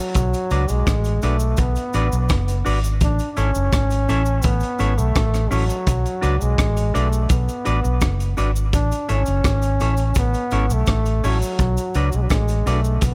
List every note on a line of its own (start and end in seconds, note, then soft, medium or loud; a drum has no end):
0.00 0.72 F#3 loud
0.14 0.32 B1 medium
0.14 kick loud
0.14 closed hi-hat loud
0.14 cabasa medium
0.34 closed hi-hat soft
0.34 cabasa medium
0.51 0.68 C#2 loud
0.51 0.64 D4 medium
0.51 0.64 F#4 medium
0.51 0.64 B4 medium
0.51 0.64 D5 medium
0.51 closed hi-hat medium
0.51 cabasa soft
0.68 0.86 B1 medium
0.68 1.25 G#3 medium
0.68 closed hi-hat soft
0.68 cabasa medium
0.87 1.20 A1 medium
0.87 kick loud
0.87 cross-stick loud
0.87 closed hi-hat medium
0.87 cabasa medium
1.04 closed hi-hat medium
1.04 cabasa soft
1.22 1.55 B1 medium
1.22 1.60 A3 medium
1.22 1.36 D4 medium
1.22 1.36 F#4 medium
1.22 1.36 B4 medium
1.22 1.36 D5 medium
1.22 closed hi-hat medium
1.22 cabasa medium
1.39 cabasa medium
1.57 1.75 B1 medium
1.57 2.66 B3 medium
1.57 kick loud
1.57 closed hi-hat medium
1.57 cabasa medium
1.76 closed hi-hat soft
1.76 cabasa soft
1.93 2.11 A1 medium
1.93 2.07 D4 medium
1.93 2.07 F#4 medium
1.93 2.08 B4 loud
1.93 2.08 D5 loud
1.93 closed hi-hat medium
1.93 cabasa soft
2.12 2.29 B1 medium
2.12 cabasa medium
2.29 2.63 F#1 medium
2.29 kick loud
2.29 cross-stick loud
2.29 closed hi-hat medium
2.29 cabasa medium
2.48 closed hi-hat medium
2.48 cabasa medium
2.65 2.99 G#1 medium
2.65 2.78 D4 medium
2.65 2.78 F#4 medium
2.65 2.79 B4 medium
2.65 2.79 D5 medium
2.65 open hi-hat medium
2.65 cabasa soft
2.83 closed hi-hat soft
2.83 cabasa medium
3.01 3.18 A1 loud
3.01 3.33 D4 loud
3.01 kick loud
3.01 closed hi-hat medium
3.01 cabasa medium
3.19 closed hi-hat soft
3.19 cabasa medium
3.33 3.40 D4 medium
3.37 3.54 G#1 medium
3.37 3.50 C#4 medium
3.37 4.45 C#4 loud
3.37 3.50 E4 medium
3.37 3.50 A4 medium
3.37 3.50 C#5 medium
3.37 closed hi-hat medium
3.37 cabasa soft
3.55 3.72 F#1 medium
3.55 cabasa medium
3.72 4.05 G#1 medium
3.72 kick loud
3.72 cross-stick loud
3.72 closed hi-hat medium
3.72 cabasa medium
3.90 closed hi-hat medium
3.90 cabasa soft
4.08 4.41 A1 medium
4.08 4.21 C#4 medium
4.08 4.22 E4 medium
4.08 4.22 A4 medium
4.08 4.22 C#5 loud
4.08 closed hi-hat medium
4.08 cabasa soft
4.26 cabasa medium
4.42 4.61 A1 medium
4.42 5.00 B3 loud
4.42 kick loud
4.42 closed hi-hat medium
4.42 cabasa medium
4.60 closed hi-hat soft
4.60 cabasa soft
4.79 4.97 G#1 medium
4.79 4.92 C#4 medium
4.79 4.93 E4 medium
4.79 4.93 A4 medium
4.79 4.93 C#5 medium
4.79 closed hi-hat medium
4.79 cabasa soft
4.98 5.14 B1 medium
4.98 5.52 A3 loud
4.98 muted clean electric guitar stroke soft
4.98 cabasa medium
5.15 5.48 A1 medium
5.15 kick loud
5.15 cross-stick loud
5.15 closed hi-hat medium
5.15 cabasa medium
5.34 cross-stick medium
5.34 closed hi-hat soft
5.34 cabasa medium
5.51 5.68 A1 medium
5.51 6.43 F#3 medium
5.51 5.64 C#4 medium
5.51 5.64 E4 medium
5.51 5.64 A4 medium
5.51 5.64 C#5 medium
5.51 open hi-hat medium
5.51 cabasa soft
5.69 closed hi-hat soft
5.69 cabasa medium
5.87 6.04 B1 medium
5.87 kick loud
5.87 closed hi-hat loud
5.87 cabasa medium
6.06 closed hi-hat soft
6.06 cabasa medium
6.21 6.40 C#2 medium
6.21 6.35 D4 medium
6.21 6.35 F#4 medium
6.21 6.36 B4 medium
6.21 6.36 D5 medium
6.21 closed hi-hat medium
6.21 cabasa soft
6.41 6.58 B1 medium
6.41 6.97 G#3 medium
6.41 cabasa medium
6.58 6.91 A1 medium
6.58 kick loud
6.58 cross-stick loud
6.58 closed hi-hat medium
6.58 cabasa medium
6.77 closed hi-hat medium
6.77 cabasa soft
6.94 7.28 B1 medium
6.94 7.30 A3 medium
6.94 7.07 D4 medium
6.94 7.07 F#4 medium
6.94 7.07 B4 medium
6.94 7.08 D5 loud
6.94 closed hi-hat medium
6.94 cabasa soft
7.13 cabasa medium
7.29 7.47 B1 medium
7.29 8.34 B3 medium
7.29 kick loud
7.29 closed hi-hat medium
7.29 cabasa medium
7.48 closed hi-hat soft
7.48 cabasa soft
7.65 7.83 A1 medium
7.65 7.78 D4 medium
7.65 7.79 F#4 medium
7.65 7.79 B4 medium
7.65 7.79 D5 medium
7.65 closed hi-hat medium
7.65 cabasa soft
7.83 8.00 B1 medium
7.83 muted clean electric guitar stroke soft
7.83 cabasa medium
8.01 8.34 F#1 medium
8.01 kick loud
8.01 cross-stick loud
8.01 closed hi-hat medium
8.01 cabasa medium
8.20 closed hi-hat medium
8.20 cabasa medium
8.37 8.70 G#1 medium
8.37 8.50 D4 medium
8.37 8.50 F#4 medium
8.37 8.51 B4 medium
8.37 8.51 D5 medium
8.37 closed hi-hat medium
8.37 cabasa soft
8.56 cabasa medium
8.73 8.90 A1 loud
8.73 9.12 D4 loud
8.73 kick loud
8.73 closed hi-hat medium
8.73 cabasa medium
8.92 closed hi-hat medium
8.92 cabasa medium
9.09 9.26 G#1 medium
9.09 9.22 C#4 medium
9.09 10.17 C#4 loud
9.09 9.22 E4 medium
9.09 9.22 A4 medium
9.09 9.22 C#5 medium
9.09 closed hi-hat medium
9.09 cabasa soft
9.26 9.44 F#1 medium
9.26 closed hi-hat soft
9.26 cabasa medium
9.44 9.77 G#1 medium
9.44 kick loud
9.44 cross-stick loud
9.44 closed hi-hat medium
9.44 cabasa medium
9.62 closed hi-hat medium
9.62 cabasa medium
9.80 10.14 A1 medium
9.80 9.93 C#4 medium
9.80 9.94 E4 medium
9.80 9.94 A4 medium
9.80 9.94 C#5 medium
9.80 closed hi-hat medium
9.80 cabasa soft
9.97 closed hi-hat soft
9.97 cabasa medium
10.15 10.33 A1 medium
10.15 10.74 B3 loud
10.15 kick loud
10.15 closed hi-hat medium
10.15 cabasa medium
10.34 closed hi-hat soft
10.34 cabasa soft
10.51 10.69 G#1 medium
10.51 10.65 C#4 medium
10.51 10.65 E4 medium
10.51 10.65 A4 medium
10.51 10.65 C#5 medium
10.51 closed hi-hat medium
10.51 cabasa soft
10.70 10.86 B1 medium
10.70 11.28 A3 medium
10.70 muted clean electric guitar stroke soft
10.70 cabasa medium
10.86 11.20 A1 medium
10.86 kick loud
10.86 cross-stick loud
10.86 closed hi-hat medium
10.86 cabasa medium
11.06 closed hi-hat soft
11.06 cabasa medium
11.24 11.41 A1 medium
11.24 12.17 F#3 medium
11.24 11.37 C#4 medium
11.24 11.37 E4 medium
11.24 11.37 A4 medium
11.24 11.37 C#5 medium
11.24 open hi-hat medium
11.24 cabasa soft
11.42 cabasa medium
11.59 11.76 B1 loud
11.59 kick loud
11.59 closed hi-hat loud
11.59 cabasa medium
11.77 closed hi-hat soft
11.77 cabasa medium
11.94 12.12 C#2 loud
11.94 12.08 D4 medium
11.94 12.08 F#4 medium
11.94 12.08 B4 medium
11.94 12.09 D5 medium
11.94 closed hi-hat medium
11.94 cabasa soft
12.12 12.30 B1 medium
12.12 12.24 G#3 medium
12.12 cabasa medium
12.23 12.31 F#3 medium
12.30 12.63 A1 medium
12.30 12.71 G#3 medium
12.30 kick loud
12.30 cross-stick loud
12.30 closed hi-hat medium
12.30 cabasa medium
12.48 closed hi-hat medium
12.48 cabasa soft
12.66 12.99 B1 medium
12.66 13.04 A3 medium
12.66 12.79 D4 medium
12.66 12.80 F#4 medium
12.66 12.80 B4 medium
12.66 12.80 D5 medium
12.66 closed hi-hat medium
12.66 cabasa soft
12.84 cabasa medium
13.01 13.14 B1 medium
13.01 kick loud
13.01 closed hi-hat medium
13.01 cabasa medium
13.06 13.14 B3 medium